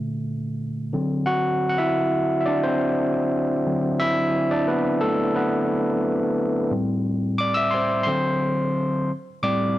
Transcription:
0.00 0.95 A#2 soft
0.00 0.93 D3 soft
0.00 0.94 A3 medium
0.93 1.91 D3 medium
0.93 1.91 F#3 soft
0.93 1.92 C4 medium
1.26 1.68 F#4 medium
1.26 1.67 F#5 medium
1.69 1.77 F#5 medium
1.78 2.39 E4 medium
1.78 2.39 E5 medium
2.41 2.46 E5 medium
2.46 2.63 D4 medium
2.46 2.64 D5 medium
2.63 3.63 C4 medium
2.63 3.62 C5 medium
3.66 4.64 D3 medium
3.66 4.64 F#3 medium
3.66 4.64 C4 medium
4.00 4.48 E4 medium
4.00 4.52 E5 loud
4.51 4.67 D4 medium
4.51 4.68 D5 medium
4.68 5.00 B3 medium
4.68 5.03 B4 medium
5.01 5.33 A3 medium
5.01 5.33 A4 medium
5.35 6.34 B3 medium
5.35 6.34 B4 medium
6.71 7.69 A2 medium
6.71 7.70 G3 soft
6.71 7.70 C4 medium
7.38 7.56 D5 medium
7.38 7.57 D6 loud
7.54 7.73 E5 medium
7.54 7.73 E6 loud
7.71 8.05 C5 medium
7.71 8.02 C6 medium
8.03 8.52 D3 medium
8.03 8.53 F#3 medium
8.03 9.04 C6 medium
8.07 8.53 C4 medium
8.07 9.06 C5 medium
9.43 9.79 A2 medium
9.43 9.79 G3 medium
9.43 9.79 C4 medium
9.43 9.79 D5 medium
9.43 9.79 D6 loud

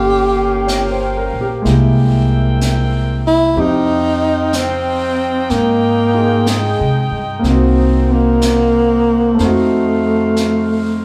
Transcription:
0.00 1.28 G1 medium
0.00 1.63 A#3 medium
0.00 1.63 A#3 soft
0.00 1.62 C#4 medium
0.00 1.64 C#4 soft
0.00 1.65 F4 soft
0.00 1.34 G4 medium
0.00 1.63 A4 soft
0.00 1.61 F5 medium
0.00 1.62 G5 medium
0.67 1.12 C#5 soft
0.67 brush sweep soft
0.67 snare soft
0.67 hi-hat pedal soft
0.91 1.32 C5 soft
1.17 1.46 A#4 soft
1.33 1.63 A#1 medium
1.41 1.65 G4 soft
1.62 3.54 C2 medium
1.62 3.56 G#3 soft
1.62 3.58 A#3 soft
1.62 3.58 E4 soft
1.62 brush sweep soft
1.62 snare soft
1.67 3.42 C4 medium
1.67 3.56 G4 soft
1.67 3.42 A#4 medium
1.67 3.42 E5 medium
1.67 3.42 G5 medium
2.61 brush sweep soft
2.61 snare soft
2.61 hi-hat pedal soft
3.27 3.61 E4 medium
3.56 5.46 F2 medium
3.56 7.44 F3 soft
3.56 7.41 C4 soft
3.56 6.12 D#4 soft
3.56 11.05 D#4 medium
3.56 4.57 D#4 medium
3.56 7.45 G4 soft
3.56 5.50 F5 medium
3.56 7.42 G5 medium
3.56 brush sweep soft
4.53 5.52 C4 medium
4.53 brush sweep soft
4.53 snare soft
4.53 hi-hat pedal soft
5.50 6.76 G#2 medium
5.50 6.51 A#3 medium
5.50 7.42 D#5 medium
5.50 brush sweep soft
5.50 snare soft
6.13 7.44 D#4 soft
6.13 7.44 F4 soft
6.13 7.45 G#4 soft
6.46 7.27 G#3 medium
6.46 brush sweep soft
6.46 snare soft
6.46 hi-hat pedal soft
6.80 7.10 C3 soft
7.11 7.42 G2 medium
7.39 9.36 A#3 soft
7.39 9.35 C4 soft
7.43 9.34 C2 medium
7.43 9.39 D#4 soft
7.43 9.38 A#4 medium
7.43 9.37 C5 medium
7.43 9.37 F#5 medium
7.43 brush sweep soft
7.43 snare soft
7.48 8.14 C4 medium
7.48 9.41 F#4 soft
8.13 9.45 A#3 medium
8.42 brush sweep soft
8.42 snare soft
8.42 hi-hat pedal soft
9.33 11.05 A3 soft
9.33 11.05 C4 soft
9.39 11.05 F2 medium
9.39 11.05 D#4 soft
9.39 11.05 F#4 medium
9.39 11.05 A4 medium
9.39 11.05 F5 medium
9.39 brush sweep soft
9.39 snare soft
9.43 11.03 A3 medium
9.43 11.05 F#4 medium
10.36 brush sweep soft
10.36 snare soft
10.36 hi-hat pedal soft

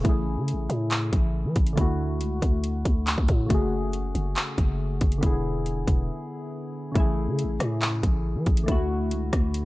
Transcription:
0.01 0.39 A1 loud
0.01 1.72 C#3 medium
0.01 1.73 A3 medium
0.01 kick loud
0.01 closed hi-hat medium
0.06 1.75 E4 medium
0.06 1.76 G#4 medium
0.37 0.55 C#3 loud
0.48 closed hi-hat medium
0.53 0.69 A1 loud
0.70 1.11 A2 loud
0.70 closed hi-hat medium
0.91 clap loud
0.91 closed hi-hat medium
1.13 1.47 A1 loud
1.13 kick medium
1.13 closed hi-hat medium
1.45 1.55 E3 loud
1.56 1.77 A1 loud
1.56 kick loud
1.56 closed hi-hat medium
1.67 closed hi-hat medium
1.73 3.44 D3 medium
1.73 3.46 A3 medium
1.77 2.22 D2 loud
1.77 3.47 E4 medium
1.77 3.48 F#4 medium
1.77 kick loud
1.77 closed hi-hat medium
2.21 2.41 C#2 loud
2.21 closed hi-hat medium
2.42 2.84 D2 loud
2.42 kick loud
2.42 closed hi-hat medium
2.64 closed hi-hat medium
2.85 3.16 D2 loud
2.85 kick medium
2.85 closed hi-hat medium
3.07 clap loud
3.07 closed hi-hat medium
3.18 3.28 D2 loud
3.18 kick medium
3.28 3.49 A2 loud
3.28 kick loud
3.28 closed hi-hat medium
3.46 4.12 F#1 loud
3.46 5.17 C#3 medium
3.46 5.19 A3 medium
3.46 kick loud
3.46 closed hi-hat medium
3.52 5.20 F#4 medium
3.52 5.22 G#4 medium
3.93 closed hi-hat medium
4.15 4.36 F#1 loud
4.15 closed hi-hat medium
4.36 clap loud
4.36 closed hi-hat medium
4.58 4.99 F#1 loud
4.58 kick medium
4.58 closed hi-hat medium
5.01 5.22 F#1 loud
5.01 kick loud
5.01 closed hi-hat medium
5.12 closed hi-hat medium
5.18 6.90 D3 medium
5.18 6.91 B3 medium
5.23 5.85 E1 loud
5.23 6.92 E4 medium
5.23 6.94 G#4 medium
5.23 kick loud
5.23 closed hi-hat medium
5.66 closed hi-hat medium
5.88 6.09 E1 loud
5.88 kick loud
5.88 closed hi-hat medium
6.92 7.29 A1 loud
6.92 8.63 C#3 medium
6.92 8.64 A3 medium
6.92 kick loud
6.92 closed hi-hat medium
6.97 8.65 E4 medium
6.97 8.67 G#4 medium
7.28 7.46 C#3 loud
7.39 closed hi-hat medium
7.44 7.59 A1 loud
7.60 8.02 A2 loud
7.60 cross-stick medium
7.60 closed hi-hat medium
7.82 clap loud
7.82 closed hi-hat medium
8.03 8.37 A1 loud
8.03 kick medium
8.03 closed hi-hat medium
8.36 8.46 E3 loud
8.46 8.67 A1 loud
8.46 kick loud
8.46 closed hi-hat medium
8.57 closed hi-hat medium
8.64 9.65 D3 medium
8.64 9.65 A3 medium
8.68 9.13 D2 loud
8.68 9.65 E4 medium
8.68 9.65 F#4 medium
8.68 kick loud
8.68 closed hi-hat medium
9.11 9.32 C#2 loud
9.11 closed hi-hat medium
9.33 9.65 D2 loud
9.33 kick loud
9.33 cross-stick medium
9.33 closed hi-hat medium
9.54 closed hi-hat medium

